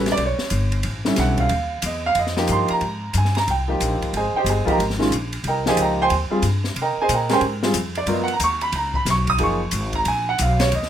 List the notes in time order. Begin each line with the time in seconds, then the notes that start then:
Already playing: A1 G3 C#4 F#4 A4
0.06 snare, ride
0.12 D5
0.17 B1, ride
0.26 C#5
0.39 snare
0.50 G1, hi-hat pedal, ride
0.72 ride
0.83 A1, ride
1.05 D3 G3 C#4 E4, snare
1.16 B1 F#5, snare, hi-hat pedal, ride
1.38 F5, kick, ride
1.49 D#2, ride
1.82 E2 D#5, hi-hat pedal, ride
2.06 F5
2.15 F2, ride
2.19 D#5
2.27 snare
2.36 F3 A#3 D#4 G4, snare
2.47 G2, hi-hat pedal, ride
2.52 C6
2.68 A#5, muted upright bass stroke, ride
2.81 G#2, ride
3.13 G2, hi-hat pedal, ride
3.18 G#5
3.25 snare
3.35 A#5, snare, ride
3.48 C2 G5, ride
3.68 F3 A#3 D#4 G4
3.80 A#1, hi-hat pedal, ride
4.01 muted upright bass stroke, kick, ride
4.13 G#1 G#5, ride
4.17 G#4 C5 D#5
4.34 C5 D#5 G5, muted upright bass stroke
4.38 G4
4.44 G1, hi-hat pedal, ride
4.49 G#4 C5 D#5 G#5
4.65 F3 A#3 D#4 G4, muted upright bass stroke, kick, ride
4.69 A#4 D#5 G5 A#5
4.78 G#1, ride
4.90 snare
4.98 D#3 G#3 C#4 F4, snare
5.11 A#1, hi-hat pedal, ride
5.33 ride
5.44 C2 A#5, ride
5.48 A#4 D#5 G5
5.66 F3 A#3 D#4 G4 G#4 C5 D#5 G#5, snare
5.77 C#2, hi-hat pedal, ride
5.82 A#4 D#5 G5 A#5
6.02 C5 G5 G#5 C6
6.10 D#2, ride
6.30 G3 C4 F4 G#4, muted upright bass stroke
6.42 G2, hi-hat pedal, ride
6.64 snare
6.76 C3, ride
6.82 A#4 D#5 G5 A#5
6.97 muted upright bass stroke
7.02 G#4 C5 D#5 G#5
7.09 A#2, hi-hat pedal, ride
7.14 A#4 D#5 G5 A#5
7.29 G#3 C#4 G4 A#4 G#5 C6, snare, ride
7.33 C5 G5
7.41 G#2, ride
7.63 G3 C4 F4 G#4, snare
7.74 F2, hi-hat pedal, ride
7.95 D5, ride
8.06 F#2 F#3 B3 F4 A#4, ride
8.12 D#5
8.24 F#5
8.28 ride
8.33 A#5
8.40 D#2 C#6, hi-hat pedal, ride
8.61 B5, ride
8.72 C#2 A#5, ride
8.94 B5, kick
9.05 B1, snare, hi-hat pedal, ride
9.10 C#6
9.27 D#6, kick, ride
9.38 F#1 F3 A#3 D#4 G#4, ride
9.43 C#6
9.71 G#1, hi-hat pedal, ride
9.93 A#5, kick, ride
10.05 A#1 G#5, ride
10.29 F#5
10.39 B1 F5, hi-hat pedal, ride
10.60 C#5, snare, ride
10.72 D#2 D#5, ride
10.83 snare